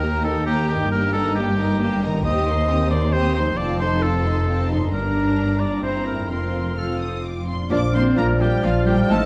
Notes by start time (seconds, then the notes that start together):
Already playing: D#2 D#3 A#3 D#4 G4 A#4
0.01 A#3 G4 A#5
0.24 D#4 A4 A#4 G5
0.45 A#3 G4 A#5
0.67 D#4 G4 A#4 G5
0.73 G2
0.77 A#3
0.82 D#4
0.86 G4
0.91 G1 G2 A#3 G4 A#4 G5
1.13 D#4 A4 A#4 A#5
1.35 A#3 G4 G5
1.58 D#4 A#4 A#5
1.80 A#3 G4 G5
2.03 D#3 D#4 A#4 A#5
2.11 C4
2.15 D#4
2.20 G4
2.24 D#2 C4 G4 D#5 D#6
2.46 D#4 C5 C6
2.68 C4 G4 D#6
2.90 D#4 C5 D5 C6
3.13 C4 G4 C5 D#6
3.35 D#4 C5 C6
3.40 F3
3.44 C4
3.49 D#4
3.53 F4 D5
3.58 F1 F2 C4 F4 A5
3.80 D#4 A4 C5 C6
4.02 C4 F4 A4 A5
4.25 D#4 A4 C6
4.48 C4 F4 A5
4.70 G2 D#4 A4 C6
4.79 A#3
4.83 D4
4.92 G1 G2 D4 A#4 A#5
5.60 D5
5.65 G2
5.69 A#3
5.73 C4
5.78 E4
5.83 G1 G2 C4 E4 C5 A#5
6.07 A#4
6.12 F2
6.16 C4
6.21 F4
6.30 F1 F2 C4 F4 A#4 C6
6.77 C4 F4 A4 F6
7.01 D#6
7.24 D6
7.48 C6
7.52 A#2
7.57 A#3
7.62 D4
7.66 D4 F4 F6
7.70 A#1 F3 A#3 D4 F4 D5 D6
7.94 F3 A#3 C4 D4 F4 C5 C6
8.16 A#1 F3 A#3 D4 F4 A#4 A#5
8.39 F3 G3 A#3 D4 F4 G4 G5
8.63 A#1 F3 A#3 D4 F4 F5
8.86 F3 G3 A#3 D4 F4 G4 G5
8.92 A2
8.96 C4
9.01 D#4
9.05 A3 F4 D#5
9.10 A1 F3 C4 D#4 F4 A4 A5